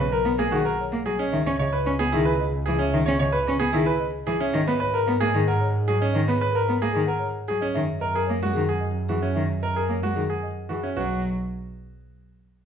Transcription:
0.00 1.18 B1 medium
0.00 0.16 B4 medium
0.00 0.16 C#5 medium
0.12 0.29 A#4 medium
0.25 0.35 B3 medium
0.38 0.48 A#3 medium
0.38 0.56 G#4 medium
0.51 0.62 D#3 medium
0.51 0.69 F#4 medium
0.51 0.70 G#4 medium
0.65 0.83 A#4 medium
0.65 0.83 F#5 medium
0.80 0.97 C#5 medium
0.92 1.02 A#3 medium
1.06 1.16 F#3 medium
1.06 1.23 G#4 medium
1.19 1.36 C#4 medium
1.19 1.37 D#5 medium
1.32 4.39 C#2 medium
1.32 1.43 D#3 medium
1.32 1.50 E5 medium
1.46 1.56 C#4 medium
1.46 1.58 C#5 medium
1.59 1.69 C#3 medium
1.59 1.77 C#5 medium
1.59 1.77 D#5 medium
1.73 1.90 B4 medium
1.86 1.96 C#4 medium
1.86 2.03 C#5 medium
1.99 2.10 B3 medium
1.99 2.17 G#4 medium
2.12 2.23 D#3 medium
2.12 2.30 E4 medium
2.12 2.30 G#4 medium
2.25 2.43 B4 medium
2.25 2.44 G#5 medium
2.40 2.57 D#5 medium
2.66 2.77 E3 medium
2.66 2.83 G#4 medium
2.66 2.84 G#4 medium
2.79 2.97 C#4 medium
2.79 2.92 E5 medium
2.93 3.04 D#3 medium
2.93 3.10 E5 medium
3.06 3.17 C#4 medium
3.06 3.18 C#5 medium
3.19 3.30 C#3 medium
3.19 3.37 C#5 medium
3.19 3.37 D#5 medium
3.32 3.50 B4 medium
3.46 3.57 C#4 medium
3.46 3.64 C#5 medium
3.59 3.70 B3 medium
3.59 3.77 G#4 medium
3.72 3.83 D#3 medium
3.72 3.91 E4 medium
3.72 3.90 G#4 medium
3.86 4.04 B4 medium
3.86 4.04 G#5 medium
4.00 4.17 D#5 medium
4.27 4.37 E3 medium
4.27 4.44 G#4 medium
4.40 4.58 C#4 medium
4.40 4.58 E5 medium
4.53 7.61 G#2 medium
4.53 4.63 D#3 medium
4.53 4.71 D#5 medium
4.67 4.77 B3 medium
4.67 4.79 B4 medium
4.80 4.98 B4 medium
4.80 4.98 C#5 medium
4.93 5.11 A#4 medium
5.07 5.17 B3 medium
5.21 5.31 A#3 medium
5.21 5.38 G#4 medium
5.34 5.44 D#3 medium
5.34 5.51 G#4 medium
5.47 5.65 A#4 medium
5.47 5.65 F#5 medium
5.61 5.78 C#5 medium
5.88 5.98 F#3 medium
5.88 6.05 G#4 medium
6.00 6.19 C#4 medium
6.00 6.12 D#5 medium
6.13 6.25 D#3 medium
6.13 6.31 D#5 medium
6.28 6.38 B3 medium
6.28 6.40 B4 medium
6.41 6.59 B4 medium
6.41 6.58 C#5 medium
6.53 6.71 A#4 medium
6.53 6.72 A#4 medium
6.66 6.78 B3 medium
6.66 6.85 B4 medium
6.82 6.92 A#3 medium
6.82 6.99 G#4 medium
6.93 7.05 D#3 medium
6.93 7.11 G#4 medium
7.06 7.25 A#4 medium
7.06 7.25 F#5 medium
7.19 7.38 C#5 medium
7.48 7.59 F#3 medium
7.48 7.66 G#4 medium
7.61 7.79 C#4 medium
7.61 7.79 D#5 medium
7.74 10.82 F#2 medium
7.74 7.85 D#3 medium
7.74 7.92 E5 medium
8.00 8.19 A#4 medium
8.00 8.19 D#5 medium
8.14 8.33 G#4 medium
8.14 8.32 A#4 medium
8.27 8.39 A#3 medium
8.27 8.45 C#5 medium
8.42 8.52 G#3 medium
8.42 8.60 F#4 medium
8.53 8.66 D#3 medium
8.53 8.72 G#4 medium
8.66 8.86 G#4 medium
8.66 8.85 F#5 medium
8.80 8.99 D#5 medium
9.08 9.19 E3 medium
9.08 9.26 F#4 medium
9.08 9.26 G#4 medium
9.21 9.40 C#4 medium
9.21 9.34 E5 medium
9.35 9.46 D#3 medium
9.35 9.53 E5 medium
9.61 9.80 A#4 medium
9.61 9.80 D#5 medium
9.75 9.94 G#4 medium
9.75 9.93 A#4 medium
9.89 9.99 A#3 medium
9.89 10.07 C#5 medium
10.03 10.13 G#3 medium
10.03 10.20 F#4 medium
10.15 10.26 D#3 medium
10.15 10.33 G#4 medium
10.29 10.47 G#4 medium
10.29 10.47 F#5 soft
10.43 10.60 D#5 medium
10.69 10.80 E3 soft
10.69 10.87 F#4 soft
10.69 10.87 G#4 soft
10.83 11.01 C#4 medium
10.83 11.00 E5 medium
10.96 11.21 B1 medium
10.96 11.22 F#3 medium
10.96 11.21 F#4 medium
10.96 11.21 B4 medium

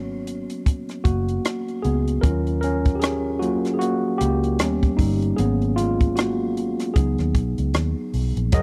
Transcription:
0.00 0.46 G#1 medium
0.00 2.22 F#3 soft
0.00 1.07 A#3 soft
0.00 1.85 B3 soft
0.00 2.23 C#4 medium
0.00 0.63 F#4 medium
0.00 0.61 C#5 medium
0.27 closed hi-hat medium
0.50 closed hi-hat medium
0.66 kick medium
0.66 closed hi-hat medium
0.89 cross-stick soft
0.89 closed hi-hat soft
1.04 1.38 F#1 medium
1.04 1.81 A#3 medium
1.04 1.86 F#4 medium
1.04 kick medium
1.04 closed hi-hat medium
1.29 closed hi-hat soft
1.45 cross-stick medium
1.45 closed hi-hat medium
1.68 closed hi-hat soft
1.82 2.17 C#2 medium
1.82 2.21 B3 medium
1.82 2.24 G#4 medium
1.82 closed hi-hat medium
2.07 closed hi-hat soft
2.21 3.60 D#2 medium
2.21 2.78 F#3 soft
2.21 2.60 C#4 medium
2.21 2.78 F4 soft
2.21 2.59 A#4 medium
2.21 kick loud
2.21 closed hi-hat medium
2.47 closed hi-hat soft
2.61 2.94 C#4 medium
2.61 2.96 A#4 loud
2.61 closed hi-hat medium
2.85 kick medium
2.85 closed hi-hat soft
2.95 3.02 G4 medium
3.00 3.39 C#4 medium
3.00 3.41 G#4 medium
3.00 closed hi-hat medium
3.04 cross-stick loud
3.39 3.77 F#3 soft
3.39 3.73 A#3 medium
3.39 3.77 C#4 soft
3.39 3.77 F4 soft
3.39 3.75 F#4 medium
3.39 closed hi-hat medium
3.65 cross-stick soft
3.65 closed hi-hat soft
3.74 3.80 G#4 medium
3.79 4.18 A#3 medium
3.79 4.20 F#4 medium
3.79 closed hi-hat medium
4.18 4.60 C#2 medium
4.18 4.95 A#3 medium
4.18 5.00 G4 medium
4.18 closed hi-hat medium
4.44 closed hi-hat soft
4.59 4.92 D#2 medium
4.59 4.99 G3 soft
4.59 5.34 B3 soft
4.59 5.35 C#4 medium
4.59 cross-stick medium
4.59 closed hi-hat medium
4.83 kick medium
4.83 closed hi-hat soft
4.97 5.32 G1 medium
4.97 5.36 G3 medium
4.97 5.38 D#4 medium
4.97 kick medium
4.97 open hi-hat medium
5.22 closed hi-hat soft
5.36 6.75 G#1 loud
5.36 5.93 F#3 soft
5.36 5.93 A#3 soft
5.36 5.76 B3 medium
5.36 5.94 C#4 medium
5.36 5.78 G#4 medium
5.36 closed hi-hat medium
5.62 closed hi-hat soft
5.76 6.15 G#3 medium
5.76 6.17 F4 medium
5.76 closed hi-hat medium
6.00 kick medium
6.00 closed hi-hat soft
6.16 6.92 A#3 medium
6.16 6.97 F#4 medium
6.16 cross-stick loud
6.16 closed hi-hat medium
6.57 closed hi-hat medium
6.80 cross-stick soft
6.80 closed hi-hat medium
6.94 7.15 C#2 medium
6.94 8.09 F#3 medium
6.94 8.10 B3 medium
6.94 8.10 D#4 soft
6.94 8.09 G#4 medium
6.94 kick medium
6.94 closed hi-hat medium
7.18 7.32 D#2 medium
7.18 cross-stick soft
7.18 closed hi-hat soft
7.35 7.54 B1 medium
7.35 kick medium
7.35 closed hi-hat medium
7.58 7.72 C#2 medium
7.58 closed hi-hat soft
7.74 7.93 D#2 medium
7.74 cross-stick medium
7.74 closed hi-hat medium
8.14 8.33 B1 medium
8.14 open hi-hat medium
8.37 8.50 A#1 medium
8.37 closed hi-hat soft
8.52 8.62 F#1 loud
8.52 8.62 F#3 loud
8.52 8.62 F#4 medium
8.52 8.62 G#4 medium
8.52 8.62 A#4 medium
8.52 8.62 D#5 loud
8.52 kick medium
8.52 closed hi-hat medium

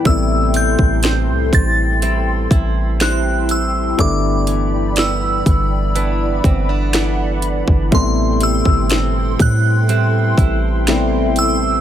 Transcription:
0.00 0.54 E3 medium
0.00 0.15 B3 medium
0.00 0.16 D4 medium
0.00 7.88 E4 medium
0.00 5.92 G5 medium
0.04 0.76 A1 loud
0.04 3.98 A2 medium
0.04 3.94 C3 medium
0.04 3.95 G3 medium
0.04 3.95 A3 medium
0.04 3.96 B3 medium
0.04 3.95 A4 medium
0.04 3.95 C6 medium
0.04 0.57 E6 loud
0.04 kick loud
0.04 closed hi-hat medium
0.09 3.96 E4 medium
0.54 2.01 G3 medium
0.54 1.57 G6 loud
0.54 closed hi-hat medium
0.79 1.30 A1 loud
0.79 kick medium
1.03 2.01 C4 medium
1.03 snare loud
1.03 closed hi-hat medium
1.29 1.52 C2 loud
1.53 2.47 A1 loud
1.53 2.97 A6 loud
1.53 kick medium
1.53 closed hi-hat medium
2.02 3.00 G3 medium
2.02 3.00 C4 medium
2.02 2.51 E4 medium
2.02 closed hi-hat medium
2.51 3.95 A1 loud
2.51 3.01 E4 medium
2.51 kick medium
2.51 closed hi-hat medium
3.00 4.48 G3 medium
3.00 4.09 C4 medium
3.00 5.96 E4 medium
3.00 3.52 F#6 loud
3.00 snare loud
3.00 closed hi-hat medium
3.49 4.01 E6 medium
3.49 closed hi-hat medium
3.97 5.42 G1 loud
3.97 7.92 G2 medium
3.97 7.88 D3 medium
3.97 7.88 G3 medium
3.97 7.89 A3 medium
3.97 7.89 B3 medium
3.97 7.88 D5 medium
3.97 7.88 B5 medium
3.97 4.94 D6 loud
3.97 kick loud
3.97 closed hi-hat medium
4.02 7.90 E4 medium
4.47 5.95 E3 medium
4.47 closed hi-hat medium
4.96 5.95 B3 medium
4.96 7.40 E6 medium
4.96 snare loud
4.96 closed hi-hat medium
5.46 6.41 G1 loud
5.46 kick loud
5.46 closed hi-hat medium
5.95 6.93 E3 medium
5.95 6.93 B3 medium
5.95 6.44 D4 medium
5.95 7.90 F#5 medium
5.95 closed hi-hat medium
6.44 7.63 G1 loud
6.44 6.69 C4 medium
6.44 kick medium
6.44 closed hi-hat medium
6.69 6.93 D4 medium
6.93 8.41 E3 medium
6.93 8.02 B3 medium
6.93 8.02 D4 medium
6.93 snare loud
6.93 closed hi-hat medium
7.42 closed hi-hat medium
7.68 7.91 G1 loud
7.68 kick loud
7.91 8.63 A1 loud
7.91 11.81 A2 medium
7.91 10.83 C3 medium
7.91 10.83 G3 medium
7.91 10.84 A3 medium
7.91 10.84 B3 medium
7.91 11.81 E4 medium
7.91 11.81 A4 medium
7.91 11.81 G5 medium
7.91 11.81 C6 medium
7.91 8.44 C6 loud
7.91 kick loud
7.91 closed hi-hat medium
7.95 8.00 D4 medium
8.02 10.88 E4 medium
8.41 9.88 G3 medium
8.41 9.37 E6 loud
8.41 closed hi-hat medium
8.65 9.37 G1 loud
8.65 kick medium
8.90 9.88 C4 medium
8.90 snare loud
8.90 closed hi-hat medium
9.39 10.34 A2 loud
9.39 11.43 F#6 loud
9.39 kick medium
9.39 closed hi-hat medium
9.89 10.87 G3 medium
9.89 10.86 C4 medium
9.89 10.38 E4 medium
9.89 closed hi-hat medium
10.38 11.81 A1 loud
10.38 10.88 E4 medium
10.38 kick loud
10.38 closed hi-hat medium
10.87 11.81 C3 medium
10.87 11.81 G3 medium
10.87 11.81 A3 medium
10.87 11.81 B3 medium
10.87 11.81 C4 medium
10.87 11.81 E4 medium
10.87 snare loud
10.87 closed hi-hat medium
11.36 11.81 E6 loud
11.36 closed hi-hat medium

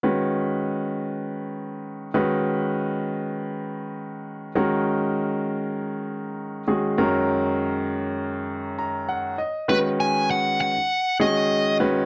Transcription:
0.03 2.11 D#3 medium
0.03 2.10 G#3 soft
0.03 2.10 C#4 soft
0.03 2.10 F#4 soft
0.03 2.11 B4 medium
2.14 4.52 D#3 medium
2.14 4.52 G#3 medium
2.14 4.52 C#4 medium
2.14 4.52 F#4 medium
2.14 4.52 B4 medium
4.55 6.63 D#3 medium
4.55 6.63 G#3 medium
4.55 6.63 C#4 medium
4.55 6.63 F#4 medium
4.55 6.63 A#4 medium
6.67 6.97 D#3 soft
6.67 6.97 G#3 soft
6.67 6.96 C#4 soft
6.67 6.97 F#4 soft
6.67 6.98 G#4 soft
6.98 9.35 F#2 medium
6.98 9.35 D#3 medium
6.98 9.35 G#3 medium
6.98 9.35 C#4 medium
6.98 9.35 F#4 medium
6.98 9.35 A#4 medium
8.79 9.06 A#5 medium
9.09 9.37 F#5 medium
9.38 9.66 D#5 medium
9.68 10.73 D#3 medium
9.68 10.73 G#3 soft
9.68 10.73 C#4 medium
9.68 10.73 F#4 medium
9.68 10.73 B4 medium
9.68 9.77 B4 medium
10.00 10.30 G#5 medium
10.30 10.59 F#5 medium
10.61 11.16 F#5 medium
11.20 11.78 D#3 medium
11.20 11.78 G#3 medium
11.20 11.79 C#4 medium
11.20 11.78 F#4 medium
11.20 11.80 G#4 medium
11.20 11.77 D#5 medium
11.80 12.05 D#3 medium
11.80 12.05 G#3 medium
11.80 12.05 C#4 medium
11.80 12.05 F#4 medium
11.80 12.05 B4 medium

